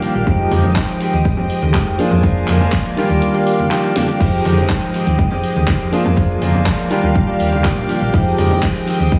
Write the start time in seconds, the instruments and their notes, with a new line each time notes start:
Already playing: tine electric piano D#3 G3 D4 F4, string machine G4 F5 D6
0.02 clean electric guitar F3 A#3 D4 G4, muted fingered electric bass stroke, open hi-hat, tambourine
0.14 fingered electric bass A#1, clean electric guitar A#3 D4 G4, tambourine
0.26 fingered electric bass F2, clean electric guitar D#3 G#3 C4 G4, tine electric piano F3 G#3 D#4 G4, string machine G#3 G5 D#6, kick, closed hi-hat, tambourine
0.39 tambourine
0.51 fingered electric bass F2, clean electric guitar D#3 G#3 C4 G4, open hi-hat, tambourine, high conga
0.63 fingered electric bass F1, tambourine, low conga
0.76 clean electric guitar D#3 G#3 C4 G4, kick, clap, closed hi-hat
0.89 closed hi-hat, tambourine
1.00 clean electric guitar D#3 G#3 C4 G4, open hi-hat, tambourine
1.13 fingered electric bass D#2, clean electric guitar G#3 C4 G4, closed hi-hat, tambourine
1.25 muted fingered electric bass stroke, kick, closed hi-hat, tambourine
1.37 fingered electric bass F1, clean electric guitar G#3 C4 G4, low conga
1.50 open hi-hat, tambourine
1.62 fingered electric bass D#2, closed hi-hat, tambourine, high conga
1.74 clean electric guitar D#3 G#3 C4 G4, kick, clap, closed hi-hat, tambourine
1.87 fingered electric bass F1, tambourine
1.98 tine electric piano F3 A#3 D4 G#4, clean electric guitar F3 G#3 D4 F4, string machine A#4 G#5 D6, open hi-hat, tambourine
2.11 fingered electric bass F2, clean electric guitar G#3 D4 F4, tambourine, low conga
2.23 clean electric guitar F3 G#3 D4 F4, kick, closed hi-hat, tambourine
2.36 tambourine
2.47 fingered electric bass F2, clean electric guitar F3 G#3 D4 F4, clap, open hi-hat, tambourine, high conga
2.60 fingered electric bass F1, tambourine, low conga
2.72 clean electric guitar F3 G#3 D4 F4, kick, clap, closed hi-hat, tambourine
2.85 closed hi-hat, tambourine
2.96 tine electric piano D#3 G3 D4 F4, clean electric guitar F3 A#3 D4 G4, string machine G4 F5, muted fingered electric bass stroke, open hi-hat, tambourine
3.09 fingered electric bass D#2, clean electric guitar A#3 D4 G4, closed hi-hat, tambourine
3.21 closed hi-hat, tambourine
3.34 clean electric guitar A#3 D4 G4, closed hi-hat, tambourine
3.47 open hi-hat, tambourine
3.60 closed hi-hat, tambourine, high conga
3.71 clean electric guitar F3 A#3 D4 G4, clap, closed hi-hat, tambourine
3.84 closed hi-hat, tambourine
3.95 clean electric guitar F3 A#3 D4 G4, snare, open hi-hat, tambourine, high conga
4.08 clean electric guitar A#3 D4 G4, closed hi-hat, tambourine
4.19 fingered electric bass F2, clean electric guitar D#3 G#3 C4 G4, tine electric piano F3 G#3 D#4 G4, string machine G#3 G5 D#6, kick, closed hi-hat, crash, tambourine
4.33 tambourine
4.44 fingered electric bass F2, clean electric guitar D#3 G#3 C4 G4, open hi-hat, tambourine, high conga
4.57 fingered electric bass F1, tambourine, low conga
4.69 clean electric guitar D#3 G#3 C4 G4, kick, clap, closed hi-hat, tambourine
4.82 closed hi-hat, tambourine
4.93 clean electric guitar D#3 G#3 C4 G4, open hi-hat, tambourine
5.06 fingered electric bass D#2, clean electric guitar G#3 C4 G4, closed hi-hat, tambourine
5.18 kick, closed hi-hat, tambourine
5.31 fingered electric bass F1, clean electric guitar G#3 C4 G4, low conga
5.43 open hi-hat, tambourine
5.56 fingered electric bass D#2, closed hi-hat, tambourine, high conga
5.67 clean electric guitar D#3 G#3 C4 G4, kick, clap, closed hi-hat, tambourine
5.80 fingered electric bass F1, tambourine
5.91 tine electric piano F3 A#3 D4 G#4, clean electric guitar F3 G#3 D4 F4, string machine A#4 G#5 D6, open hi-hat, tambourine
6.04 fingered electric bass F2, clean electric guitar G#3 D4 F4, tambourine, low conga
6.16 clean electric guitar F3 G#3 D4 F4, kick, closed hi-hat, tambourine
6.30 tambourine
6.41 fingered electric bass F2, clean electric guitar F3 G#3 D4 F4, open hi-hat, tambourine, high conga
6.54 fingered electric bass F1, tambourine, low conga
6.66 clean electric guitar F3 G#3 D4 F4, kick, clap, closed hi-hat
6.78 closed hi-hat, tambourine
6.90 tine electric piano D#3 G3 D4 F4, clean electric guitar F3 A#3 D4 G4, string machine G4 F5 D6, muted fingered electric bass stroke, open hi-hat, tambourine
7.02 fingered electric bass D#2, clean electric guitar A#3 D4 G4, closed hi-hat, tambourine
7.15 kick, closed hi-hat, tambourine
7.27 clean electric guitar A#3 D4 G4
7.40 fingered electric bass D#2, open hi-hat, tambourine
7.52 closed hi-hat, tambourine, high conga
7.64 clean electric guitar F3 A#3 D4 G4, kick, clap, closed hi-hat
7.77 fingered electric bass A#1, tambourine
7.88 clean electric guitar F3 A#3 D4 G4, open hi-hat, tambourine
8.01 fingered electric bass A#1, clean electric guitar A#3 D4 G4, tambourine
8.13 fingered electric bass F2, clean electric guitar D#3 G#3 C4 G4, tine electric piano F3 G#3 D#4 G4, string machine G#3 G5 D#6, kick, closed hi-hat, tambourine
8.27 tambourine
8.38 fingered electric bass F2, clean electric guitar D#3 G#3 C4 G4, open hi-hat, tambourine, high conga
8.51 fingered electric bass F1, tambourine, low conga
8.62 clean electric guitar D#3 G#3 C4 G4, kick, clap, closed hi-hat
8.76 closed hi-hat, tambourine
8.87 clean electric guitar D#3 G#3 C4 G4, open hi-hat, tambourine
8.99 fingered electric bass D#2, clean electric guitar G#3 C4 G4, closed hi-hat, tambourine
9.12 muted fingered electric bass stroke, kick, closed hi-hat, tambourine